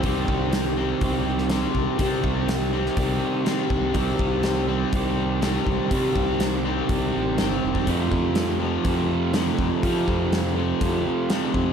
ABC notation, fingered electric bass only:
X:1
M:4/4
L:1/16
Q:1/4=122
K:Cdor
V:1 name="Fingered electric bass" clef=bass
C,,2 C,,6 C,,6 C,, z | C,2 C,,6 C,,2 z4 C,,2 | C,,2 C,,6 C,,6 C,, z | C,2 C,,6 C,,2 A,,,2 G,,,2 F,,,2 |
F,,2 F,,6 F,,6 F,, z | F,2 F,,6 F,,2 z4 F,,2 |]